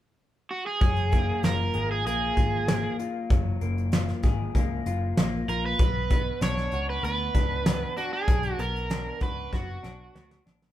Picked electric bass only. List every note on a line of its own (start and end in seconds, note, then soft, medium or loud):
0.82 1.31 F#1 medium
1.43 1.68 F#1 medium
1.75 2.06 G#1 medium
2.06 2.31 A#1 medium
2.37 2.87 G#1 medium
3.30 3.55 F#1 medium
3.62 4.12 F#1 loud
4.23 4.48 G#1 medium
4.55 4.80 C#2 medium
4.86 5.11 F#1 medium
5.18 5.42 A#1 medium
5.48 5.73 A#1 medium
5.79 6.29 B1 loud
6.41 6.66 B1 medium
6.72 6.97 C#2 medium
7.03 7.28 D2 medium
7.35 7.84 C#2 medium
8.28 8.53 B1 loud
8.59 9.09 B1 medium
9.21 9.46 C#2 medium
9.52 9.77 F#1 medium
9.84 10.09 B1 medium
10.15 10.40 D2 medium
10.46 10.71 A#1 medium